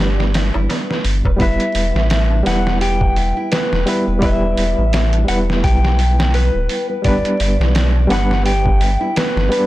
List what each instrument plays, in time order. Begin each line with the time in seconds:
Already playing: sub bass G1, reed electric piano G3 B3 D4 B4
0.00 nylon-string guitar G4
0.20 snare, darbuka tek
0.34 nylon-string guitar E5, snare, open hi-hat
0.54 sub bass G1, nylon-string guitar E4, darbuka tek
0.70 nylon-string guitar B3, snare, open hi-hat, darbuka tek
0.90 snare, darbuka tek
1.04 sub bass G1, open hi-hat
1.25 sub bass D1, nylon-string guitar B4, kick, darbuka tek
1.37 sub bass E1, reed electric piano G3 B3 E4, nylon-string guitar E4, kick, open hi-hat
1.42 reed electric piano B4, electric slide guitar E5
1.60 closed hi-hat
1.75 sub bass E1, nylon-string guitar E5, open hi-hat
1.95 sub bass A1, snare
2.10 snare, open hi-hat
2.30 nylon-string guitar D4
2.43 sub bass E1, reed electric piano G3 B3 E4, electric slide guitar F#5, snare, open hi-hat
2.49 reed electric piano B4
2.67 snare
2.81 nylon-string guitar G4, electric slide guitar G5, open hi-hat
3.01 kick
3.16 nylon-string guitar E5, open hi-hat
3.37 nylon-string guitar E4
3.52 nylon-string guitar B3, electric slide guitar B4, snare, open hi-hat
3.72 sub bass E1, snare
3.86 reed electric piano G3 B3 E4 B4, open hi-hat
4.07 sub bass E1, nylon-string guitar B4
4.19 reed electric piano G3 B3, nylon-string guitar E4, electric slide guitar E5, kick, open hi-hat
4.23 reed electric piano E4 B4
4.57 sub bass E1, nylon-string guitar E5, open hi-hat
4.78 sub bass A1
4.93 snare, open hi-hat
5.13 nylon-string guitar D4, closed hi-hat
5.25 sub bass E1, reed electric piano G3 B3, electric slide guitar F#5, open hi-hat
5.29 reed electric piano E4 B4
5.50 snare
5.64 sub bass B1, nylon-string guitar G4, electric slide guitar G5, kick, open hi-hat
5.85 snare
5.99 nylon-string guitar E5, open hi-hat
6.19 nylon-string guitar E4, snare
6.34 nylon-string guitar B3, electric slide guitar B4, open hi-hat
6.55 sub bass D1
6.69 open hi-hat
6.89 nylon-string guitar B4
7.02 sub bass G1, reed electric piano G3 B3 D4, nylon-string guitar E4, electric slide guitar D5, kick, open hi-hat
7.08 reed electric piano B4
7.25 closed hi-hat
7.40 sub bass G1, nylon-string guitar E5, open hi-hat
7.60 sub bass B1, snare
7.75 snare, open hi-hat
7.95 nylon-string guitar D4
8.07 sub bass G1, reed electric piano G3 B3 D4, open hi-hat
8.11 reed electric piano B4, electric slide guitar F#5, snare
8.31 snare
8.45 nylon-string guitar G4, electric slide guitar G5, open hi-hat
8.66 kick
8.80 nylon-string guitar E5, open hi-hat
9.01 nylon-string guitar E4
9.16 nylon-string guitar B3, electric slide guitar B4, snare, open hi-hat
9.36 sub bass G1, snare
9.49 reed electric piano G3 B3 D4 B4, open hi-hat